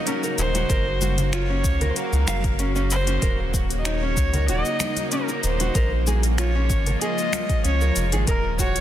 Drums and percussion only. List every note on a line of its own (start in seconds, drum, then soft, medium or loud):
0.07 closed hi-hat medium
0.07 shaker soft
0.23 high bongo soft
0.23 shaker soft
0.38 closed hi-hat soft
0.38 shaker medium
0.55 closed hi-hat soft
0.55 high bongo soft
0.55 high conga medium
0.55 shaker soft
0.70 kick loud
0.70 closed hi-hat medium
0.70 shaker soft
1.01 high conga medium
1.01 shaker medium
1.18 closed hi-hat soft
1.18 low conga medium
1.18 shaker soft
1.33 finger snap medium
1.33 closed hi-hat medium
1.33 shaker soft
1.64 kick loud
1.64 closed hi-hat soft
1.64 shaker medium
1.81 closed hi-hat soft
1.81 low conga loud
1.81 shaker soft
1.96 closed hi-hat soft
1.96 shaker soft
2.13 shaker soft
2.27 finger snap medium
2.27 closed hi-hat soft
2.27 high conga medium
2.27 shaker medium
2.44 kick loud
2.44 closed hi-hat soft
2.44 shaker soft
2.59 closed hi-hat medium
2.59 shaker soft
2.76 shaker soft
2.91 closed hi-hat soft
2.91 shaker medium
3.07 closed hi-hat medium
3.07 high bongo medium
3.07 shaker soft
3.22 kick loud
3.22 closed hi-hat medium
3.22 shaker soft
3.54 kick medium
3.54 shaker medium
3.70 closed hi-hat soft
3.70 shaker soft
3.85 finger snap medium
3.85 closed hi-hat medium
3.85 shaker soft
4.17 kick loud
4.17 closed hi-hat soft
4.17 shaker medium
4.33 closed hi-hat soft
4.33 low conga loud
4.33 shaker soft
4.48 closed hi-hat medium
4.48 shaker soft
4.65 shaker soft
4.80 finger snap medium
4.80 closed hi-hat soft
4.80 high bongo soft
4.80 high conga medium
4.80 shaker medium
4.96 closed hi-hat soft
4.96 high conga medium
4.96 shaker soft
5.12 closed hi-hat medium
5.12 shaker soft
5.28 high bongo soft
5.28 shaker soft
5.43 closed hi-hat soft
5.43 shaker medium
5.60 closed hi-hat medium
5.60 high bongo medium
5.60 high conga medium
5.60 shaker soft
5.75 kick loud
5.75 closed hi-hat medium
5.75 shaker soft
6.07 high conga medium
6.07 shaker medium
6.23 closed hi-hat soft
6.23 shaker soft
6.38 finger snap medium
6.38 closed hi-hat medium
6.38 shaker soft
6.70 kick loud
6.70 closed hi-hat soft
6.70 shaker medium
6.86 closed hi-hat soft
6.86 low conga medium
6.86 shaker soft
7.02 closed hi-hat medium
7.02 shaker soft
7.18 shaker soft
7.33 finger snap medium
7.33 closed hi-hat soft
7.33 high conga medium
7.33 shaker medium
7.49 kick loud
7.49 closed hi-hat soft
7.49 shaker soft
7.65 closed hi-hat medium
7.65 shaker soft
7.81 shaker soft
7.96 closed hi-hat soft
7.96 shaker medium
8.12 closed hi-hat medium
8.12 high bongo medium
8.12 shaker soft
8.27 kick loud
8.27 closed hi-hat medium
8.27 shaker soft
8.59 kick medium
8.59 shaker medium
8.76 closed hi-hat soft
8.76 shaker soft